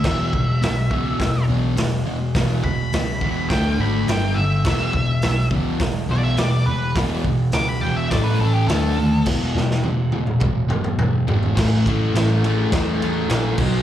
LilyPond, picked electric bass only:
\new Staff \with { instrumentName = "Picked electric bass" } { \clef bass \time 4/4 \key a \lydian \tempo 4 = 104 e,,8 e,,8 b,,8 cis,8 e,,8 b,,8 e,,8 e,,8 | e,,8 e,,8 cis,8 e,,8 d,8 gis,,8 g,,8 g,,8 | e,,8 e,,8 b,,8 cis,8 e,,8 b,,8 e,,8 e,,8 | e,,8 e,,8 cis,8 e,,8 a,,8 a,,8 d,8 dis,8 |
e,,8 e,,8 e,,8 e,,8 e,,8 e,,8 e,,8 gis,,8 | a,,4 a,,4 e,4 ais,,8 b,,8 | }